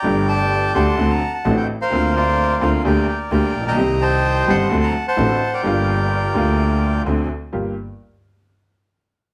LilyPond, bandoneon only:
\new Staff \with { instrumentName = "Bandoneon" } { \time 4/4 \key g \minor \tempo 4 = 128 << { bes''8 a''4 c'''8. bes''8 a''8 g''8 f''16~ | f''8 d''4 f''8 g''8 g''8 g''8. bes''16~ | bes''8 a''4 c'''8. bes''8 a''4 g''16~ | g''2. r4 |
r1 | } \\ { <d'' g''>8 d''4 <fis'' a''>2 r16 <bes' c''>16~ | <bes' c''>8 <f' bes'>4. <bes' d''>4 <bes' d''>8. <ees'' g''>16~ | <ees'' g''>8 <c'' ees''>4 <fis'' a''>4~ <fis'' a''>16 <c'' fis''>4 <bes' d''>16~ | <bes' d''>2. r4 |
r1 | } >> }